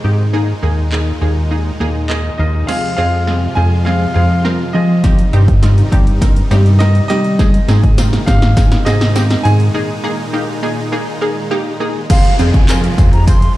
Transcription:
Already playing: C3 D#3 G#3 D#4
0.04 G#2 C4 D#4 G4
0.33 A#2 A#3 D#4 G#4
0.63 D#2 A#3 D#4 G#4
0.92 A#3 D#4 G#4, clap
1.21 D#2 A#3 D#4 G#4
1.51 A#3 D#4 G#4
1.80 D#2 A#3 D#4 G#4
2.08 A#3 D#4 G#4 D#5, clap
2.38 D#2 A#3 D#4 F4 D#5
2.67 C3 F3 G#3 C4 F4 G#4 F5, snare, crash
2.97 F2 C4 F4 G#4 F5
3.27 C4 F4 G#4, snare
3.55 F2 C4 F4 G#4 G#5
3.85 C4 F4 G#4 F5, snare
4.14 F2 C4 F4 G#4 F5
4.45 C4 F4 A#4, snare
4.73 F3 C4 F4 G#4 D#5
5.04 C4 D#4 G4, kick, snare, closed hi-hat
5.19 closed hi-hat
5.33 G2 C4 D#4 G4, closed hi-hat
5.48 kick, closed hi-hat
5.63 C4 D#4 F4, snare, closed hi-hat
5.78 closed hi-hat
5.92 G2 C4 D#4 G4, kick, closed hi-hat
6.07 closed hi-hat
6.21 C4 D#4 A#4, kick, snare, closed hi-hat
6.36 closed hi-hat
6.51 G2 C4 D#4 G4, snare, closed hi-hat
6.66 closed hi-hat
6.79 C4 D#4 A#4 D#5, snare, closed hi-hat
6.95 closed hi-hat
7.08 G3 C4 D#4 G4 D#5, snare, closed hi-hat
7.24 closed hi-hat
7.39 G#3 C4 D#4 G#4, kick, snare, closed hi-hat, tambourine
7.54 closed hi-hat
7.68 G#2 C4 D#4 G#4, snare, closed hi-hat, tambourine
7.83 kick, closed hi-hat
7.98 C4 D#4 F4, snare, closed hi-hat, tambourine
8.13 snare, closed hi-hat
8.26 G#2 C4 D#4 G4 F5, kick, snare, closed hi-hat, tambourine
8.42 snare, closed hi-hat
8.57 C4 D#4 G#4, kick, snare, closed hi-hat, tambourine
8.72 snare, closed hi-hat
8.85 G#2 C4 D#4 G#4 D#5, snare, closed hi-hat, tambourine
9.01 snare, closed hi-hat
9.15 C4 D#4 G4, snare, closed hi-hat, tambourine
9.30 snare, closed hi-hat
9.43 G#2 C4 D#4 G#4 G#5, closed hi-hat, tambourine
9.60 closed hi-hat
9.74 A#2 A#3 D#4 G#4
10.04 A#3 D#4 G#4
10.33 A#3 D#4 G4
10.63 A#3 D#4 G#4
10.92 A#3 D#4 G#4
11.21 A#3 D#4 G#4
11.51 A#3 D#4 G4
11.80 A#3 D#4 G#4
12.10 C3 F3 G#3 C4 F4 G#4 C5 F5, kick, closed hi-hat, crash, downlifter
12.25 closed hi-hat
12.39 F2 C4 F4 G#4 C5, closed hi-hat, tambourine
12.54 G#5, kick, closed hi-hat
12.69 C4 F4 G#4 A#4 G#5, clap, closed hi-hat, tambourine
12.84 closed hi-hat
12.98 F2 C4 F4 G#4 C5, kick, closed hi-hat, tambourine
13.13 F2 A#5, closed hi-hat
13.27 C4 F4 G#4 C5 C6, kick, closed hi-hat, tambourine
13.42 closed hi-hat

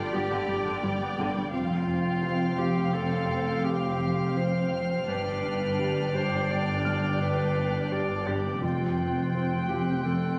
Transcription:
Already playing: G1 F4 D5 G5 A5 E6 F6 A6 B6
0.13 G1 G2 B3 G4
0.30 G2 D3
0.47 G1 G2 G3
0.65 G2 D3
0.82 G1 G2 G3
1.00 G2 B3
1.17 G1 G2 D3
1.35 G2 G3
1.52 F1 F2 C4 F4 F5 G5 C7
1.88 F2
2.23 F3 F6
2.58 F3 G4
2.93 F2 A4
3.28 F2
3.63 F2 G4
3.99 F2
4.36 F3 C5
4.73 F2
5.08 G1 G2 D4 B4 D5 G5
5.44 G2
5.79 G3
6.14 G3 C5
6.50 G2 D5
6.85 G2 F6
7.21 G2 B4
7.57 G2
7.92 G3 D5
8.27 G2 G4 A6
8.62 F1 F2 C4 F4 G5 C6 F#6
8.99 F2
9.34 F3
9.69 F3 G4
10.05 F2 A4

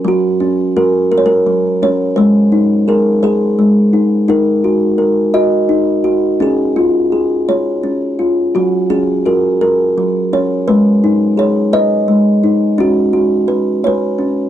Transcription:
0.05 F#3 F#4
0.40 C#4
0.77 F#4 A#4
1.12 A#4
1.18 C#5
1.26 A#4
1.47 F#3
1.82 C#4 C#5
2.16 G#3 C5
2.52 D#4
2.88 G#4 A#4
3.23 G#4 C5
3.59 G#3
3.93 D#4
4.28 D#4 A#4
4.64 F#4
4.98 A#4
5.34 F#4 D#5
5.69 D#4
6.04 F#4
6.40 C#4 G#4
6.76 F4
7.12 G#4
7.49 C#5
7.83 C#4
8.19 F4
8.55 F#3 F#4
8.90 C#4 G#4
9.26 F#4 A#4
9.61 A#4
9.98 F#3
10.33 C#4 C#5
10.68 G#3 B4
11.04 D#4
11.37 G#4 C#5
11.73 B4 D#5
12.08 G#3
12.44 D#4
12.78 C#4 F#4
13.13 F#4
13.48 B4
13.84 B4 C#5
14.19 C#4

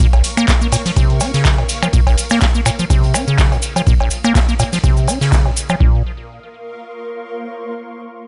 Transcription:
Already playing: A#4 F5 C#6
0.00 kick, closed hi-hat, cabasa
0.13 A#1, closed hi-hat, cowbell
0.24 closed hi-hat, open hi-hat, cabasa
0.37 A#3, finger snap, closed hi-hat, cowbell, cabasa
0.48 A#3, kick, snare, clap, closed hi-hat, cabasa
0.61 A#3, cabasa
0.72 A#2, closed hi-hat, open hi-hat, cowbell, cabasa
0.85 F3, snare, open hi-hat, cabasa
0.96 C3, kick, closed hi-hat, cowbell, cabasa
1.10 closed hi-hat
1.20 C#4, closed hi-hat, open hi-hat, cowbell, cabasa
1.34 C#3, snare, closed hi-hat, cabasa
1.45 kick, snare, clap, closed hi-hat, cabasa
1.58 A#2, closed hi-hat, cowbell
1.69 closed hi-hat, open hi-hat, cabasa
1.83 F3, finger snap, closed hi-hat, cowbell, cabasa
1.93 A#2, kick, closed hi-hat, cabasa
2.07 A#1, closed hi-hat, cowbell
2.18 closed hi-hat, open hi-hat, cabasa
2.30 A#3, finger snap, snare, closed hi-hat, cowbell, cabasa
2.41 A#3, kick, snare, clap, closed hi-hat, cabasa
2.55 A#3, cabasa
2.65 A#2, finger snap, closed hi-hat, open hi-hat, cowbell, cabasa
2.79 F3, closed hi-hat, cabasa
2.88 C3 D#6, kick, closed hi-hat, cowbell, cabasa
3.04 closed hi-hat
3.14 C#4, finger snap, closed hi-hat, open hi-hat, cowbell, cabasa
3.28 C#3, closed hi-hat, cabasa
3.38 kick, snare, clap, closed hi-hat, cabasa
3.52 A#2, closed hi-hat, cowbell
3.62 closed hi-hat, open hi-hat, cabasa
3.76 F3, closed hi-hat, cowbell, cabasa
3.87 A#2, kick, closed hi-hat, cabasa
4.00 A#1, closed hi-hat, cowbell
4.11 closed hi-hat, open hi-hat, cabasa
4.24 A#3, finger snap, closed hi-hat, cowbell, cabasa
4.35 kick, snare, clap, closed hi-hat, cabasa
4.49 A#3, closed hi-hat, cabasa
4.59 A#2, closed hi-hat, open hi-hat, cowbell, cabasa
4.73 F3, snare, open hi-hat, cabasa
4.84 C3, kick, closed hi-hat, cowbell, cabasa
4.97 closed hi-hat, cabasa
5.08 C#4, closed hi-hat, open hi-hat, cowbell, cabasa
5.21 C#3, snare, closed hi-hat, cabasa
5.32 kick, snare, clap, closed hi-hat, cabasa
5.45 A#2, closed hi-hat, cowbell
5.56 closed hi-hat, open hi-hat, cabasa
5.69 F3, finger snap, cowbell, cabasa
5.80 A#2 A#4, kick
5.88 F5
5.96 C6
6.02 C#6

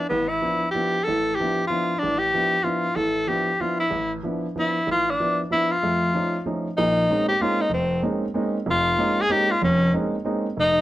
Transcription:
0.09 A1 B3
0.29 E4
0.41 F3 B3 D4 E4
0.71 F3 B3 D4 G4
0.75 E4
1.04 A1 A2 A4
1.35 G4
1.40 F3 B3 D4 E4
1.67 F3 B3 E4 F4
1.71 D4
1.99 D4
2.03 A1
2.19 G4
2.34 F3 B3 D4 E4
2.63 F3 B3 D4 E4 F4
2.96 A1 A2 A4
3.27 F3 B3 D4 E4 G4
3.60 F3 B3 D4 E4 F4
3.80 E4
3.91 A1
4.23 F3 B3 D4 E4
4.56 F3 B3 D4 E4
4.87 A1 F4
5.10 D4
5.20 F3 B3 D4 E4
5.50 F3 B3 D4 E4
5.71 F4
5.83 F2 A3
6.14 F3 A3 C#4 D#4
6.46 F3 A3 C#4 D#4
6.78 A#1 A#2 D#4
7.10 G#3 A#3 C4 C#4 D#4
7.28 G4
7.41 G#3 A#3 C4 C#4 D#4 F4
7.61 D#4
7.70 F1 C4
8.02 G#3 A#3 C4 C#4 D#4
8.34 G#3 A#3 C4 C#4 D#4
8.66 F1 F2
8.71 F4
8.98 G#3 A#3 C4 C#4 D#4
9.21 G#4
9.29 G#3 A#3 C4 C#4 D#4 G4
9.51 F4
9.62 F1 F2 C#4
9.94 G#3 A#3 C4 C#4 D#4
10.25 G#3 A#3 C4 C#4 D#4
10.57 F1 D#4

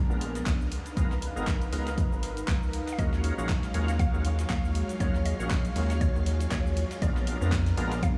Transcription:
Already playing: G#3 B3 D4 A#4 G#5
0.10 A#1 G#3 B3 D4 F4 A#4, shaker
0.21 closed hi-hat, open hi-hat
0.35 snare, closed hi-hat, shaker
0.46 C#2, kick, snare, clap, closed hi-hat, shaker
0.61 shaker
0.72 D#4 A#4 B4 F5, closed hi-hat, open hi-hat
0.85 F5, closed hi-hat, shaker
0.93 C#2 G#3 B3 D#4 F4 A#4 A#5, kick, closed hi-hat
0.98 shaker
1.11 snare, shaker
1.22 closed hi-hat, open hi-hat
1.36 G#1 G#3 B3 D#4 F4 A#4, shaker
1.47 kick, snare, clap, closed hi-hat, shaker
1.61 closed hi-hat, shaker
1.72 C#2 G#3 B3 D#4 F4 A#4, open hi-hat
1.87 snare, closed hi-hat, shaker
1.98 kick, closed hi-hat, shaker
2.12 G#1, shaker
2.23 snare, closed hi-hat, open hi-hat
2.37 closed hi-hat, shaker
2.48 C#2, kick, snare, clap, closed hi-hat, shaker
2.63 shaker
2.73 closed hi-hat, open hi-hat
2.87 snare, closed hi-hat, shaker
2.92 F5
2.98 D#2 F#3 G#3 C#4 F4 F#4 A#4 C#5 D#5 F5, kick, closed hi-hat, shaker
3.13 snare, shaker
3.24 closed hi-hat, open hi-hat
3.30 C#5
3.38 A#1 G#3 C#4 F4 F#4 A#4, shaker
3.43 G#5
3.49 kick, snare, clap, closed hi-hat, shaker
3.63 snare, closed hi-hat, shaker
3.74 D#2 G#3 C#4 F4 F#4 A#4, closed hi-hat, open hi-hat
3.88 snare, closed hi-hat, shaker
3.99 F5, kick, closed hi-hat, shaker
4.13 D#2 G#3 C#4 F4 F#4 A#4, shaker
4.25 closed hi-hat, open hi-hat
4.39 snare, closed hi-hat, shaker
4.50 D#2 F5, kick, snare, clap, closed hi-hat, shaker
4.65 shaker
4.75 closed hi-hat, open hi-hat
4.89 closed hi-hat, shaker
5.00 D#2 G#3 C#4 F4 F#4 A#4 C#5, kick, closed hi-hat, shaker
5.14 snare, shaker
5.25 D#5, closed hi-hat, open hi-hat
5.39 A#1 G#3 C#4 F4 F#4 A#4, shaker
5.51 kick, snare, clap, closed hi-hat, shaker
5.65 closed hi-hat, shaker
5.76 D#2 G#3 C#4 F4 F#4 A#4, open hi-hat
5.90 snare, closed hi-hat, shaker
6.01 C#5, kick, closed hi-hat, shaker
6.15 D#2, shaker
6.26 snare, closed hi-hat, open hi-hat
6.40 closed hi-hat, shaker
6.51 D#2 C#5, kick, snare, clap, closed hi-hat, shaker
6.66 shaker
6.77 closed hi-hat, open hi-hat
6.91 snare, closed hi-hat, shaker
7.02 A#1 G#3 B3 D4 F4 G#4 A#4 D5, kick, closed hi-hat, shaker
7.13 D5, snare, shaker
7.27 closed hi-hat, open hi-hat
7.41 F2 G#3 B3 D4 F4 A#4, shaker
7.52 kick, snare, clap, closed hi-hat, shaker
7.66 snare, closed hi-hat, shaker
7.77 A#1 G#3 B3 D4 F4 A#4, closed hi-hat, open hi-hat
7.92 snare, closed hi-hat, shaker
8.03 F5, kick, closed hi-hat, shaker

